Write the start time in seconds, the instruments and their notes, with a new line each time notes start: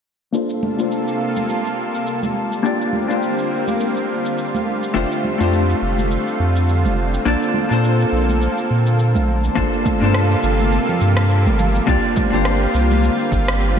0.33 analog synth pad C3 G3 A#3 F4 A4, hollow-body jazz guitar A#3 D4 F4 A4 C5, shaker
0.50 shaker
0.63 high conga
0.76 hollow-body jazz guitar A#3 D4 F4, shaker
0.80 hollow-body jazz guitar A4 C5
0.92 shaker
1.08 shaker
1.36 high conga, shaker
1.49 shaker
1.66 shaker
1.95 shaker
2.07 shaker
2.23 high conga, shaker
2.52 shaker
2.63 analog synth pad D3 A#3 C4 F4, hollow-body jazz guitar A#3 D4 F4 G4 D5, shaker
2.81 shaker
2.93 high conga
3.07 hollow-body jazz guitar A#3 D4 F4 G4, shaker
3.12 hollow-body jazz guitar C5
3.23 shaker
3.39 shaker
3.68 high conga, shaker
3.80 shaker
3.97 shaker
4.25 shaker
4.38 shaker
4.55 high conga, shaker
4.83 shaker
4.94 sub bass F1, hollow-body jazz guitar A3 D4 F4 G4 C5, analog synth pad A3 C4, shaker
5.12 shaker
5.25 high conga
5.38 sub bass F2, hollow-body jazz guitar A3 D4 F4 G4, shaker
5.43 hollow-body jazz guitar C5
5.53 shaker
5.70 shaker
5.82 sub bass F1
5.98 high conga, shaker
6.11 shaker
6.27 shaker
6.40 sub bass F2
6.56 shaker
6.69 shaker
6.85 sub bass F1, high conga, shaker
7.14 shaker
7.25 sub bass A#1, hollow-body jazz guitar A#3 D4 F4 A4 D5, analog synth pad A#3 A4, shaker
7.43 shaker
7.54 high conga
7.69 sub bass A#2, hollow-body jazz guitar A#3 D4 F4 A4, shaker
7.74 hollow-body jazz guitar C5
7.84 shaker
8.01 shaker
8.12 sub bass A#1
8.29 high conga, shaker
8.42 shaker
8.58 shaker
8.71 sub bass A#2
8.86 shaker
8.99 shaker
9.15 sub bass A#1, high conga, shaker
9.44 shaker
9.55 sub bass G1, analog synth pad C3 G3 A#3 F4 A4, hollow-body jazz guitar A#3 D4 F4 A4 C5, kick, shaker
9.73 shaker
9.86 kick, high conga, shaker
10.00 sub bass G2, hollow-body jazz guitar A#3 D4 F4 A4, shaker
10.05 hollow-body jazz guitar C5
10.14 cross-stick, shaker
10.31 shaker
10.43 sub bass G1, shaker
10.60 high conga, shaker
10.72 shaker
10.88 low conga, shaker
11.01 sub bass G2, shaker
11.17 cross-stick, shaker
11.30 shaker
11.46 sub bass G1, high conga, shaker
11.59 low conga, shaker
11.75 shaker
11.87 sub bass C2, analog synth pad D3 C4 F4, hollow-body jazz guitar A#3 D4 F4 G4 D5, kick, shaker
12.04 shaker
12.16 kick, high conga, shaker
12.30 sub bass G1, hollow-body jazz guitar A#3 D4 F4 G4, shaker
12.35 hollow-body jazz guitar C5
12.45 cross-stick, shaker
12.62 shaker
12.74 sub bass C2, shaker
12.91 high conga, shaker
13.04 shaker
13.20 shaker
13.32 sub bass G1, kick, shaker
13.48 cross-stick, shaker
13.61 shaker